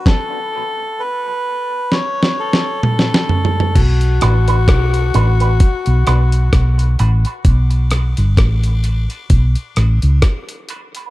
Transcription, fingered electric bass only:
X:1
M:4/4
L:1/16
Q:"Swing 16ths" 1/4=65
K:Bm
V:1 name="Fingered electric bass" clef=bass
z16 | B,,,2 A,,,2 B,,,2 A,,,2 z B,,, B,,,2 B,,,2 A,,, z | B,,,3 G,,, A,,,3 z B,,, z A,,, C,, z4 |]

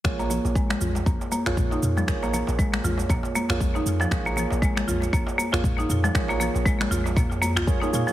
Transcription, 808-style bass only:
X:1
M:4/4
L:1/16
Q:"Swing 16ths" 1/4=118
K:Bbm
V:1 name="808-style bass" clef=bass
B,,,3 B,,,3 B,,, z B,,, z2 B,,,3 F,, z | B,,,3 B,,,3 B,,, z B,,, z2 B,,,3 F,, z | B,,,3 B,,,3 B,,, z B,,, z2 B,,,3 F,, z | B,,,3 B,,,3 B,,,2 F,,3 B,,, z2 B,, z |]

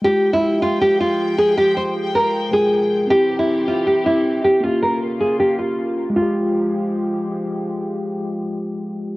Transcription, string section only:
X:1
M:4/4
L:1/8
Q:1/4=157
K:Fm
V:1 name="String section"
[F,A,g]8- | [F,A,g]8 | [=E,CG]8 | [D,B,F]8 |
[F,A,G]8- | [F,A,G]8 |]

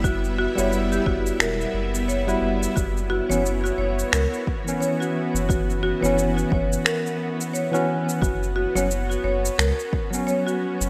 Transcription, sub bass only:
X:1
M:4/4
L:1/16
Q:"Swing 16ths" 1/4=88
K:none
V:1 name="Sub bass" clef=bass
^F,,,3 F,,,3 F,,, z E,,, z F,,,4 F,,, z | ^F,,,3 F,,,3 F,,, z ^C,, z6 F,,,- | ^F,,,3 F,,,3 F,,, z8 z | ^F,,,3 F,,,3 F,,, z ^C,, z6 F,,, |]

